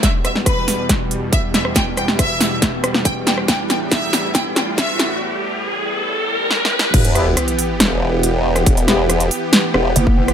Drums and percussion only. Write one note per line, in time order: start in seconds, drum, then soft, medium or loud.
0.03 kick medium
0.03 snare soft
0.03 closed hi-hat medium
0.25 cross-stick soft
0.25 closed hi-hat medium
0.36 snare soft
0.46 kick loud
0.46 cross-stick medium
0.46 closed hi-hat medium
0.68 snare soft
0.68 open hi-hat medium
0.89 kick medium
0.89 snare soft
0.89 closed hi-hat medium
1.11 closed hi-hat medium
1.33 kick medium
1.33 closed hi-hat medium
1.54 snare medium
1.54 closed hi-hat soft
1.65 cross-stick medium
1.76 kick medium
1.76 snare medium
1.76 closed hi-hat medium
1.97 cross-stick soft
1.97 closed hi-hat medium
2.08 snare soft
2.19 kick medium
2.19 cross-stick soft
2.19 closed hi-hat medium
2.41 snare medium
2.41 open hi-hat medium
2.62 kick medium
2.62 snare medium
2.62 closed hi-hat medium
2.84 cross-stick medium
2.84 closed hi-hat medium
2.94 snare medium
3.05 kick loud
3.05 closed hi-hat medium
3.27 snare medium
3.27 closed hi-hat medium
3.38 cross-stick soft
3.48 kick loud
3.48 snare medium
3.48 closed hi-hat medium
3.70 snare medium
3.70 closed hi-hat soft
3.92 kick loud
3.92 snare medium
3.92 closed hi-hat medium
4.13 snare medium
4.13 open hi-hat medium
4.35 kick medium
4.35 snare medium
4.35 closed hi-hat medium
4.56 snare medium
4.56 closed hi-hat medium
4.78 kick loud
4.78 snare medium
4.78 closed hi-hat medium
4.99 snare medium
4.99 closed hi-hat medium
6.51 snare medium
6.65 snare medium
6.79 snare loud
6.94 kick loud
6.94 closed hi-hat medium
6.94 crash loud
7.05 closed hi-hat medium
7.15 cross-stick medium
7.15 closed hi-hat medium
7.37 cross-stick medium
7.37 closed hi-hat medium
7.48 closed hi-hat medium
7.59 open hi-hat loud
7.80 snare loud
7.80 closed hi-hat medium
8.23 closed hi-hat medium
8.56 cross-stick medium
8.56 closed hi-hat soft
8.66 kick loud
8.66 closed hi-hat medium
8.77 closed hi-hat medium
8.88 cross-stick soft
8.88 snare medium
8.88 closed hi-hat medium
9.10 cross-stick medium
9.10 closed hi-hat medium
9.20 closed hi-hat medium
9.31 open hi-hat loud
9.53 snare loud
9.53 closed hi-hat medium
9.74 cross-stick medium
9.96 closed hi-hat medium
10.07 kick medium
10.28 cross-stick medium
10.28 closed hi-hat soft